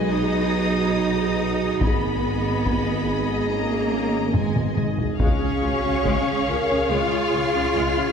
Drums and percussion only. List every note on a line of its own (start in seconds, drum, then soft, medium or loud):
1.81 taiko medium
2.66 taiko medium
4.35 taiko low-mid medium
4.56 taiko mid medium
4.77 taiko mid medium
4.98 taiko low medium
5.20 taiko medium
6.05 taiko medium